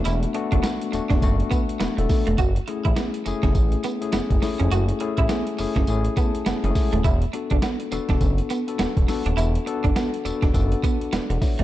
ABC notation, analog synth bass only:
X:1
M:4/4
L:1/16
Q:"Swing 16ths" 1/4=103
K:Emix
V:1 name="Analog synth bass" clef=bass
E,,,2 z F,,, z2 E,,, E,,, F,,,2 z2 E,,, E,,, z ^E,,, | F,,,2 z A,,, z2 F,,, F,,, A,,,2 z2 F,,, F,,, z ^E,,, | F,,,2 z A,,, z2 F,,, F,,, A,,,2 z2 F,,, F,,, z ^D,,, | E,,,2 z F,,, z2 E,,, E,,, F,,,2 z2 E,,, E,,, z ^D,,, |
E,,,2 z F,,, z2 E,,, E,,, F,,,2 z2 E,,, E,,, z ^E,,, |]